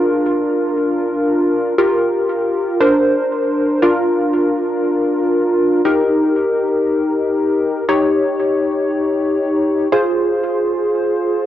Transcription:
0.00 1.75 D4 medium
0.00 1.75 F4 medium
0.00 1.75 A#4 medium
1.78 2.78 F4 medium
1.78 2.78 G4 medium
1.78 2.78 A#4 medium
2.80 3.80 D4 medium
2.80 3.80 A#4 medium
2.80 3.80 C5 medium
3.82 5.81 D4 medium
3.82 5.81 F4 medium
3.82 5.81 A#4 medium
5.85 7.85 D#4 medium
5.85 7.85 G4 medium
5.85 7.85 A#4 medium
7.89 9.88 D#4 medium
7.89 9.88 G4 medium
7.89 9.88 C#5 medium
9.92 11.46 F4 medium
9.92 11.46 G#4 medium
9.92 11.46 C5 medium

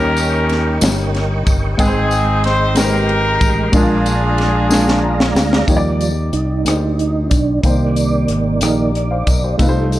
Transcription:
0.00 0.78 D#2 loud
0.00 0.78 D#3 medium
0.00 0.57 G3 medium
0.00 0.58 A#3 medium
0.00 0.58 C#4 medium
0.00 0.78 C#4 medium
0.00 0.58 D#4 medium
0.00 0.78 G4 medium
0.00 0.59 A#4 medium
0.00 0.81 A#4 medium
0.00 1.75 A#4 medium
0.00 3.71 D#5 medium
0.00 0.81 G5 medium
0.00 1.78 C#6 medium
0.17 ride soft
0.17 tambourine medium
0.49 snare soft
0.49 ride soft
0.80 1.43 G1 loud
0.80 1.75 G2 medium
0.80 0.87 F3 medium
0.80 1.54 A#3 medium
0.80 1.55 C#4 medium
0.80 1.55 D#4 medium
0.80 1.55 A#4 medium
0.80 3.71 G5 medium
0.80 snare loud
0.80 ride medium
0.80 tambourine medium
0.87 1.57 G3 medium
1.14 snare soft
1.14 ride soft
1.46 1.76 G1 medium
1.46 kick medium
1.46 ride soft
1.46 tambourine medium
1.77 3.37 G#1 loud
1.77 2.72 G#2 medium
1.77 2.51 G#3 medium
1.77 5.65 G#3 medium
1.77 2.51 C4 medium
1.77 2.73 C4 medium
1.77 2.52 D#4 medium
1.77 2.73 D#4 medium
1.77 2.40 G#4 loud
1.77 1.86 B4 medium
1.77 2.52 G5 medium
1.77 3.72 C6 medium
1.77 kick loud
1.77 ride medium
1.77 tambourine medium
1.87 2.56 C5 medium
2.11 ride soft
2.11 tambourine medium
2.44 2.77 C5 loud
2.44 snare soft
2.44 ride soft
2.75 3.48 G#3 medium
2.75 3.49 C4 medium
2.75 3.70 D#4 medium
2.75 3.49 D#4 medium
2.75 3.70 G4 medium
2.75 3.49 G4 medium
2.75 3.70 A#4 loud
2.75 2.83 B4 medium
2.75 snare loud
2.75 ride medium
2.75 tambourine medium
2.84 3.53 C5 medium
3.09 ride soft
3.41 3.71 A1 medium
3.41 kick medium
3.41 ride soft
3.41 tambourine medium
3.72 5.32 A#1 loud
3.72 4.67 A#2 medium
3.72 4.46 G#3 medium
3.72 4.46 A#3 medium
3.72 4.46 D4 medium
3.72 5.33 D4 medium
3.72 4.47 F4 medium
3.72 5.33 F4 medium
3.72 5.37 G#4 medium
3.72 4.47 A#4 medium
3.72 5.67 D5 medium
3.72 5.67 F5 medium
3.72 5.67 A#5 medium
3.72 kick loud
3.72 ride medium
3.72 tambourine medium
4.06 ride soft
4.06 tambourine medium
4.38 snare soft
4.38 ride soft
4.69 5.43 G#3 medium
4.69 5.44 A#3 medium
4.69 5.44 D4 medium
4.69 5.45 F4 medium
4.69 5.45 G#4 medium
4.69 snare medium
4.69 tambourine medium
4.88 snare medium
5.03 5.34 A#5 medium
5.20 snare medium
5.35 5.66 D2 medium
5.35 5.67 F5 medium
5.35 snare loud
5.35 tambourine medium
5.53 snare loud
5.66 6.30 D#2 medium
5.66 6.62 D#3 medium
5.66 6.12 F3 soft
5.66 6.12 G3 soft
5.66 6.41 A#3 medium
5.66 6.41 D#4 medium
5.66 6.42 G4 medium
5.66 5.76 C#5 medium
5.66 6.12 D5 soft
5.66 kick medium
5.66 closed hi-hat medium
5.66 tambourine soft
5.77 6.46 D5 medium
6.01 closed hi-hat soft
6.01 tambourine soft
6.33 6.63 C2 medium
6.33 7.27 D#4 medium
6.33 closed hi-hat medium
6.63 7.27 D2 medium
6.63 7.38 A#3 soft
6.63 7.39 D#4 soft
6.63 7.39 G4 soft
6.63 7.40 C5 medium
6.63 closed hi-hat medium
6.63 tambourine medium
6.68 cross-stick medium
6.99 closed hi-hat soft
7.30 7.61 B1 medium
7.30 7.61 D4 medium
7.30 kick medium
7.30 closed hi-hat medium
7.30 tambourine soft
7.63 8.25 C2 medium
7.63 8.58 C3 medium
7.63 8.61 D#3 soft
7.63 8.37 A#3 medium
7.63 8.61 A#3 soft
7.63 8.37 D#4 medium
7.63 8.38 G4 medium
7.63 8.38 C5 medium
7.63 9.56 D5 medium
7.63 kick medium
7.63 closed hi-hat medium
7.63 tambourine soft
7.96 closed hi-hat soft
7.96 tambourine soft
8.28 8.59 G#1 medium
8.28 cross-stick soft
8.28 closed hi-hat medium
8.60 9.23 A#1 medium
8.60 8.91 D#3 soft
8.60 9.34 A#3 medium
8.60 8.92 A#3 soft
8.60 9.35 D#4 medium
8.60 8.92 D#4 soft
8.60 8.95 G4 medium
8.60 8.95 A#4 medium
8.60 cross-stick loud
8.60 closed hi-hat medium
8.60 tambourine medium
8.95 cross-stick soft
8.95 closed hi-hat soft
9.11 9.27 C5 soft
9.11 9.26 F5 medium
9.27 9.57 B1 medium
9.27 9.43 A#4 medium
9.27 9.43 D#5 medium
9.27 kick medium
9.27 closed hi-hat medium
9.27 tambourine soft
9.44 9.75 G4 soft
9.44 9.67 C5 medium
9.57 9.99 C2 medium
9.57 9.99 C3 medium
9.57 9.99 G3 soft
9.57 9.99 A3 soft
9.57 9.99 A3 medium
9.57 9.99 D#4 medium
9.57 9.99 F4 medium
9.57 kick medium
9.57 closed hi-hat medium
9.57 tambourine soft
9.62 9.67 B4 medium
9.69 9.99 C5 medium
9.92 closed hi-hat soft
9.92 tambourine soft

